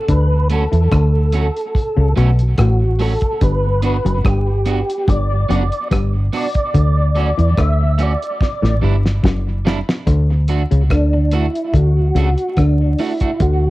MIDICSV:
0, 0, Header, 1, 7, 480
1, 0, Start_track
1, 0, Key_signature, 2, "major"
1, 0, Tempo, 832178
1, 50, Time_signature, 4, 2, 24, 8
1, 7902, End_track
2, 0, Start_track
2, 0, Title_t, "Tonewheel organ"
2, 0, Program_c, 0, 16
2, 0, Note_on_c, 0, 69, 100
2, 59, Note_on_c, 0, 71, 100
2, 78, Note_off_c, 0, 69, 0
2, 278, Note_off_c, 0, 71, 0
2, 307, Note_on_c, 0, 69, 83
2, 1235, Note_off_c, 0, 69, 0
2, 1501, Note_on_c, 0, 66, 78
2, 1741, Note_on_c, 0, 69, 89
2, 1742, Note_off_c, 0, 66, 0
2, 1979, Note_on_c, 0, 71, 101
2, 1982, Note_off_c, 0, 69, 0
2, 2198, Note_off_c, 0, 71, 0
2, 2222, Note_on_c, 0, 71, 98
2, 2463, Note_off_c, 0, 71, 0
2, 2464, Note_on_c, 0, 67, 93
2, 2940, Note_on_c, 0, 74, 102
2, 2951, Note_off_c, 0, 67, 0
2, 3392, Note_off_c, 0, 74, 0
2, 3673, Note_on_c, 0, 74, 107
2, 4385, Note_on_c, 0, 76, 99
2, 4402, Note_off_c, 0, 74, 0
2, 4624, Note_off_c, 0, 76, 0
2, 4630, Note_on_c, 0, 74, 92
2, 5076, Note_off_c, 0, 74, 0
2, 6302, Note_on_c, 0, 62, 77
2, 6542, Note_off_c, 0, 62, 0
2, 6545, Note_on_c, 0, 64, 78
2, 6784, Note_off_c, 0, 64, 0
2, 6786, Note_on_c, 0, 66, 87
2, 7263, Note_on_c, 0, 62, 83
2, 7272, Note_off_c, 0, 66, 0
2, 7495, Note_on_c, 0, 64, 88
2, 7503, Note_off_c, 0, 62, 0
2, 7738, Note_on_c, 0, 66, 105
2, 7739, Note_off_c, 0, 64, 0
2, 7902, Note_off_c, 0, 66, 0
2, 7902, End_track
3, 0, Start_track
3, 0, Title_t, "Clean electric guitar"
3, 0, Program_c, 1, 27
3, 292, Note_on_c, 1, 57, 83
3, 298, Note_on_c, 1, 61, 82
3, 304, Note_on_c, 1, 66, 90
3, 363, Note_off_c, 1, 57, 0
3, 365, Note_off_c, 1, 61, 0
3, 368, Note_off_c, 1, 66, 0
3, 770, Note_on_c, 1, 57, 77
3, 776, Note_on_c, 1, 61, 77
3, 780, Note_on_c, 1, 66, 91
3, 842, Note_off_c, 1, 57, 0
3, 845, Note_off_c, 1, 61, 0
3, 847, Note_off_c, 1, 66, 0
3, 1245, Note_on_c, 1, 57, 90
3, 1250, Note_on_c, 1, 61, 84
3, 1254, Note_on_c, 1, 66, 90
3, 1319, Note_off_c, 1, 57, 0
3, 1321, Note_off_c, 1, 61, 0
3, 1324, Note_off_c, 1, 66, 0
3, 1726, Note_on_c, 1, 57, 82
3, 1732, Note_on_c, 1, 61, 76
3, 1737, Note_on_c, 1, 66, 89
3, 1799, Note_off_c, 1, 57, 0
3, 1803, Note_off_c, 1, 61, 0
3, 1805, Note_off_c, 1, 66, 0
3, 2205, Note_on_c, 1, 59, 77
3, 2209, Note_on_c, 1, 62, 82
3, 2215, Note_on_c, 1, 66, 93
3, 2279, Note_off_c, 1, 59, 0
3, 2281, Note_off_c, 1, 62, 0
3, 2284, Note_off_c, 1, 66, 0
3, 2687, Note_on_c, 1, 59, 78
3, 2690, Note_on_c, 1, 62, 84
3, 2696, Note_on_c, 1, 66, 95
3, 2760, Note_off_c, 1, 59, 0
3, 2761, Note_off_c, 1, 62, 0
3, 2764, Note_off_c, 1, 66, 0
3, 3166, Note_on_c, 1, 59, 87
3, 3172, Note_on_c, 1, 62, 86
3, 3176, Note_on_c, 1, 66, 97
3, 3239, Note_off_c, 1, 59, 0
3, 3242, Note_off_c, 1, 62, 0
3, 3244, Note_off_c, 1, 66, 0
3, 3650, Note_on_c, 1, 59, 77
3, 3656, Note_on_c, 1, 62, 88
3, 3656, Note_on_c, 1, 66, 90
3, 3721, Note_off_c, 1, 59, 0
3, 3724, Note_off_c, 1, 62, 0
3, 3725, Note_off_c, 1, 66, 0
3, 4126, Note_on_c, 1, 57, 83
3, 4133, Note_on_c, 1, 61, 88
3, 4137, Note_on_c, 1, 66, 101
3, 4199, Note_off_c, 1, 57, 0
3, 4203, Note_off_c, 1, 61, 0
3, 4205, Note_off_c, 1, 66, 0
3, 4604, Note_on_c, 1, 57, 84
3, 4610, Note_on_c, 1, 61, 79
3, 4616, Note_on_c, 1, 66, 92
3, 4678, Note_off_c, 1, 57, 0
3, 4681, Note_off_c, 1, 61, 0
3, 4685, Note_off_c, 1, 66, 0
3, 5086, Note_on_c, 1, 55, 75
3, 5091, Note_on_c, 1, 62, 89
3, 5098, Note_on_c, 1, 64, 83
3, 5159, Note_off_c, 1, 55, 0
3, 5162, Note_off_c, 1, 62, 0
3, 5165, Note_off_c, 1, 64, 0
3, 5567, Note_on_c, 1, 55, 80
3, 5572, Note_on_c, 1, 62, 86
3, 5578, Note_on_c, 1, 64, 91
3, 5640, Note_off_c, 1, 55, 0
3, 5642, Note_off_c, 1, 62, 0
3, 5645, Note_off_c, 1, 64, 0
3, 6050, Note_on_c, 1, 57, 74
3, 6054, Note_on_c, 1, 62, 89
3, 6056, Note_on_c, 1, 66, 94
3, 6121, Note_off_c, 1, 57, 0
3, 6123, Note_off_c, 1, 62, 0
3, 6124, Note_off_c, 1, 66, 0
3, 6532, Note_on_c, 1, 57, 81
3, 6537, Note_on_c, 1, 62, 86
3, 6544, Note_on_c, 1, 66, 84
3, 6602, Note_off_c, 1, 57, 0
3, 6605, Note_off_c, 1, 62, 0
3, 6608, Note_off_c, 1, 66, 0
3, 7016, Note_on_c, 1, 57, 80
3, 7021, Note_on_c, 1, 62, 83
3, 7023, Note_on_c, 1, 66, 91
3, 7084, Note_off_c, 1, 57, 0
3, 7087, Note_off_c, 1, 62, 0
3, 7088, Note_off_c, 1, 66, 0
3, 7492, Note_on_c, 1, 57, 78
3, 7496, Note_on_c, 1, 62, 80
3, 7499, Note_on_c, 1, 66, 80
3, 7562, Note_off_c, 1, 57, 0
3, 7564, Note_off_c, 1, 62, 0
3, 7566, Note_off_c, 1, 66, 0
3, 7619, Note_on_c, 1, 66, 54
3, 7621, Note_on_c, 1, 62, 52
3, 7626, Note_on_c, 1, 57, 52
3, 7668, Note_off_c, 1, 66, 0
3, 7669, Note_off_c, 1, 62, 0
3, 7671, Note_off_c, 1, 57, 0
3, 7902, End_track
4, 0, Start_track
4, 0, Title_t, "Clav"
4, 0, Program_c, 2, 7
4, 50, Note_on_c, 2, 50, 84
4, 194, Note_off_c, 2, 50, 0
4, 416, Note_on_c, 2, 52, 71
4, 484, Note_off_c, 2, 52, 0
4, 530, Note_on_c, 2, 50, 86
4, 674, Note_off_c, 2, 50, 0
4, 1134, Note_on_c, 2, 49, 69
4, 1202, Note_off_c, 2, 49, 0
4, 1248, Note_on_c, 2, 47, 74
4, 1392, Note_off_c, 2, 47, 0
4, 1489, Note_on_c, 2, 45, 77
4, 1633, Note_off_c, 2, 45, 0
4, 1968, Note_on_c, 2, 43, 90
4, 2112, Note_off_c, 2, 43, 0
4, 2335, Note_on_c, 2, 42, 80
4, 2403, Note_off_c, 2, 42, 0
4, 2448, Note_on_c, 2, 43, 74
4, 2592, Note_off_c, 2, 43, 0
4, 2929, Note_on_c, 2, 43, 90
4, 3073, Note_off_c, 2, 43, 0
4, 3169, Note_on_c, 2, 42, 76
4, 3245, Note_off_c, 2, 42, 0
4, 3408, Note_on_c, 2, 43, 80
4, 3553, Note_off_c, 2, 43, 0
4, 3889, Note_on_c, 2, 50, 82
4, 4033, Note_off_c, 2, 50, 0
4, 4254, Note_on_c, 2, 52, 82
4, 4323, Note_off_c, 2, 52, 0
4, 4368, Note_on_c, 2, 50, 82
4, 4512, Note_off_c, 2, 50, 0
4, 4974, Note_on_c, 2, 45, 75
4, 5042, Note_off_c, 2, 45, 0
4, 5088, Note_on_c, 2, 43, 72
4, 5232, Note_off_c, 2, 43, 0
4, 5327, Note_on_c, 2, 42, 74
4, 5471, Note_off_c, 2, 42, 0
4, 5808, Note_on_c, 2, 50, 90
4, 5952, Note_off_c, 2, 50, 0
4, 6178, Note_on_c, 2, 49, 72
4, 6245, Note_off_c, 2, 49, 0
4, 6290, Note_on_c, 2, 50, 81
4, 6434, Note_off_c, 2, 50, 0
4, 6769, Note_on_c, 2, 50, 84
4, 6913, Note_off_c, 2, 50, 0
4, 7008, Note_on_c, 2, 49, 72
4, 7085, Note_off_c, 2, 49, 0
4, 7251, Note_on_c, 2, 50, 78
4, 7394, Note_off_c, 2, 50, 0
4, 7730, Note_on_c, 2, 50, 84
4, 7874, Note_off_c, 2, 50, 0
4, 7902, End_track
5, 0, Start_track
5, 0, Title_t, "Fingered electric bass"
5, 0, Program_c, 3, 33
5, 52, Note_on_c, 3, 38, 96
5, 379, Note_off_c, 3, 38, 0
5, 421, Note_on_c, 3, 40, 82
5, 520, Note_off_c, 3, 40, 0
5, 531, Note_on_c, 3, 38, 101
5, 859, Note_off_c, 3, 38, 0
5, 1138, Note_on_c, 3, 37, 82
5, 1238, Note_off_c, 3, 37, 0
5, 1254, Note_on_c, 3, 35, 86
5, 1466, Note_off_c, 3, 35, 0
5, 1489, Note_on_c, 3, 33, 94
5, 1818, Note_off_c, 3, 33, 0
5, 1972, Note_on_c, 3, 31, 103
5, 2299, Note_off_c, 3, 31, 0
5, 2338, Note_on_c, 3, 30, 92
5, 2438, Note_off_c, 3, 30, 0
5, 2452, Note_on_c, 3, 31, 88
5, 2779, Note_off_c, 3, 31, 0
5, 2933, Note_on_c, 3, 31, 107
5, 3146, Note_off_c, 3, 31, 0
5, 3171, Note_on_c, 3, 30, 88
5, 3284, Note_off_c, 3, 30, 0
5, 3412, Note_on_c, 3, 31, 86
5, 3625, Note_off_c, 3, 31, 0
5, 3894, Note_on_c, 3, 38, 100
5, 4220, Note_off_c, 3, 38, 0
5, 4261, Note_on_c, 3, 40, 88
5, 4360, Note_off_c, 3, 40, 0
5, 4371, Note_on_c, 3, 38, 89
5, 4698, Note_off_c, 3, 38, 0
5, 4976, Note_on_c, 3, 33, 90
5, 5077, Note_off_c, 3, 33, 0
5, 5088, Note_on_c, 3, 31, 85
5, 5303, Note_off_c, 3, 31, 0
5, 5330, Note_on_c, 3, 30, 90
5, 5658, Note_off_c, 3, 30, 0
5, 5810, Note_on_c, 3, 38, 108
5, 6138, Note_off_c, 3, 38, 0
5, 6182, Note_on_c, 3, 37, 74
5, 6281, Note_off_c, 3, 37, 0
5, 6289, Note_on_c, 3, 38, 94
5, 6617, Note_off_c, 3, 38, 0
5, 6770, Note_on_c, 3, 38, 99
5, 6984, Note_off_c, 3, 38, 0
5, 7008, Note_on_c, 3, 37, 86
5, 7122, Note_off_c, 3, 37, 0
5, 7252, Note_on_c, 3, 38, 90
5, 7465, Note_off_c, 3, 38, 0
5, 7732, Note_on_c, 3, 38, 108
5, 7902, Note_off_c, 3, 38, 0
5, 7902, End_track
6, 0, Start_track
6, 0, Title_t, "Muted clean electric guitar strokes"
6, 6421, Note_on_c, 9, 29, 44
6, 6478, Note_off_c, 9, 29, 0
6, 7902, End_track
7, 0, Start_track
7, 0, Title_t, "Drums"
7, 49, Note_on_c, 9, 36, 105
7, 49, Note_on_c, 9, 42, 89
7, 107, Note_off_c, 9, 36, 0
7, 107, Note_off_c, 9, 42, 0
7, 287, Note_on_c, 9, 42, 75
7, 344, Note_off_c, 9, 42, 0
7, 420, Note_on_c, 9, 42, 52
7, 478, Note_off_c, 9, 42, 0
7, 529, Note_on_c, 9, 36, 107
7, 530, Note_on_c, 9, 42, 67
7, 534, Note_on_c, 9, 37, 109
7, 587, Note_off_c, 9, 36, 0
7, 587, Note_off_c, 9, 42, 0
7, 592, Note_off_c, 9, 37, 0
7, 765, Note_on_c, 9, 42, 87
7, 823, Note_off_c, 9, 42, 0
7, 904, Note_on_c, 9, 42, 57
7, 961, Note_off_c, 9, 42, 0
7, 1009, Note_on_c, 9, 36, 115
7, 1016, Note_on_c, 9, 42, 86
7, 1067, Note_off_c, 9, 36, 0
7, 1074, Note_off_c, 9, 42, 0
7, 1253, Note_on_c, 9, 42, 75
7, 1311, Note_off_c, 9, 42, 0
7, 1377, Note_on_c, 9, 42, 49
7, 1435, Note_off_c, 9, 42, 0
7, 1486, Note_on_c, 9, 42, 90
7, 1488, Note_on_c, 9, 36, 114
7, 1492, Note_on_c, 9, 37, 110
7, 1543, Note_off_c, 9, 42, 0
7, 1546, Note_off_c, 9, 36, 0
7, 1550, Note_off_c, 9, 37, 0
7, 1727, Note_on_c, 9, 46, 84
7, 1785, Note_off_c, 9, 46, 0
7, 1851, Note_on_c, 9, 42, 51
7, 1857, Note_on_c, 9, 36, 83
7, 1908, Note_off_c, 9, 42, 0
7, 1914, Note_off_c, 9, 36, 0
7, 1968, Note_on_c, 9, 42, 84
7, 1969, Note_on_c, 9, 36, 111
7, 2025, Note_off_c, 9, 42, 0
7, 2027, Note_off_c, 9, 36, 0
7, 2205, Note_on_c, 9, 42, 75
7, 2263, Note_off_c, 9, 42, 0
7, 2341, Note_on_c, 9, 42, 52
7, 2398, Note_off_c, 9, 42, 0
7, 2449, Note_on_c, 9, 36, 109
7, 2450, Note_on_c, 9, 42, 66
7, 2455, Note_on_c, 9, 37, 106
7, 2507, Note_off_c, 9, 36, 0
7, 2508, Note_off_c, 9, 42, 0
7, 2513, Note_off_c, 9, 37, 0
7, 2687, Note_on_c, 9, 42, 85
7, 2744, Note_off_c, 9, 42, 0
7, 2825, Note_on_c, 9, 42, 62
7, 2883, Note_off_c, 9, 42, 0
7, 2930, Note_on_c, 9, 36, 120
7, 2938, Note_on_c, 9, 42, 86
7, 2988, Note_off_c, 9, 36, 0
7, 2995, Note_off_c, 9, 42, 0
7, 3175, Note_on_c, 9, 42, 77
7, 3233, Note_off_c, 9, 42, 0
7, 3299, Note_on_c, 9, 42, 45
7, 3356, Note_off_c, 9, 42, 0
7, 3410, Note_on_c, 9, 36, 104
7, 3410, Note_on_c, 9, 42, 88
7, 3417, Note_on_c, 9, 37, 100
7, 3468, Note_off_c, 9, 36, 0
7, 3468, Note_off_c, 9, 42, 0
7, 3475, Note_off_c, 9, 37, 0
7, 3651, Note_on_c, 9, 46, 85
7, 3709, Note_off_c, 9, 46, 0
7, 3775, Note_on_c, 9, 42, 48
7, 3778, Note_on_c, 9, 36, 86
7, 3833, Note_off_c, 9, 42, 0
7, 3836, Note_off_c, 9, 36, 0
7, 3890, Note_on_c, 9, 36, 103
7, 3893, Note_on_c, 9, 42, 87
7, 3948, Note_off_c, 9, 36, 0
7, 3951, Note_off_c, 9, 42, 0
7, 4127, Note_on_c, 9, 42, 76
7, 4185, Note_off_c, 9, 42, 0
7, 4261, Note_on_c, 9, 42, 53
7, 4319, Note_off_c, 9, 42, 0
7, 4369, Note_on_c, 9, 36, 106
7, 4370, Note_on_c, 9, 42, 67
7, 4375, Note_on_c, 9, 37, 103
7, 4427, Note_off_c, 9, 36, 0
7, 4427, Note_off_c, 9, 42, 0
7, 4432, Note_off_c, 9, 37, 0
7, 4606, Note_on_c, 9, 42, 82
7, 4664, Note_off_c, 9, 42, 0
7, 4743, Note_on_c, 9, 42, 58
7, 4801, Note_off_c, 9, 42, 0
7, 4848, Note_on_c, 9, 36, 112
7, 4856, Note_on_c, 9, 38, 54
7, 4906, Note_off_c, 9, 36, 0
7, 4914, Note_off_c, 9, 38, 0
7, 4984, Note_on_c, 9, 38, 53
7, 5041, Note_off_c, 9, 38, 0
7, 5223, Note_on_c, 9, 38, 66
7, 5281, Note_off_c, 9, 38, 0
7, 5329, Note_on_c, 9, 36, 112
7, 5337, Note_on_c, 9, 38, 85
7, 5386, Note_off_c, 9, 36, 0
7, 5395, Note_off_c, 9, 38, 0
7, 5577, Note_on_c, 9, 38, 99
7, 5635, Note_off_c, 9, 38, 0
7, 5704, Note_on_c, 9, 38, 96
7, 5762, Note_off_c, 9, 38, 0
7, 5809, Note_on_c, 9, 36, 108
7, 5810, Note_on_c, 9, 42, 87
7, 5867, Note_off_c, 9, 36, 0
7, 5868, Note_off_c, 9, 42, 0
7, 6045, Note_on_c, 9, 42, 67
7, 6102, Note_off_c, 9, 42, 0
7, 6180, Note_on_c, 9, 42, 51
7, 6238, Note_off_c, 9, 42, 0
7, 6288, Note_on_c, 9, 36, 101
7, 6289, Note_on_c, 9, 42, 68
7, 6294, Note_on_c, 9, 37, 104
7, 6346, Note_off_c, 9, 36, 0
7, 6347, Note_off_c, 9, 42, 0
7, 6351, Note_off_c, 9, 37, 0
7, 6526, Note_on_c, 9, 42, 84
7, 6584, Note_off_c, 9, 42, 0
7, 6665, Note_on_c, 9, 42, 60
7, 6722, Note_off_c, 9, 42, 0
7, 6770, Note_on_c, 9, 36, 112
7, 6777, Note_on_c, 9, 42, 79
7, 6828, Note_off_c, 9, 36, 0
7, 6834, Note_off_c, 9, 42, 0
7, 7013, Note_on_c, 9, 42, 81
7, 7071, Note_off_c, 9, 42, 0
7, 7138, Note_on_c, 9, 42, 45
7, 7196, Note_off_c, 9, 42, 0
7, 7247, Note_on_c, 9, 42, 92
7, 7250, Note_on_c, 9, 36, 107
7, 7254, Note_on_c, 9, 37, 104
7, 7305, Note_off_c, 9, 42, 0
7, 7307, Note_off_c, 9, 36, 0
7, 7312, Note_off_c, 9, 37, 0
7, 7488, Note_on_c, 9, 46, 80
7, 7546, Note_off_c, 9, 46, 0
7, 7613, Note_on_c, 9, 42, 49
7, 7618, Note_on_c, 9, 36, 85
7, 7671, Note_off_c, 9, 42, 0
7, 7675, Note_off_c, 9, 36, 0
7, 7729, Note_on_c, 9, 42, 85
7, 7730, Note_on_c, 9, 36, 105
7, 7786, Note_off_c, 9, 42, 0
7, 7787, Note_off_c, 9, 36, 0
7, 7902, End_track
0, 0, End_of_file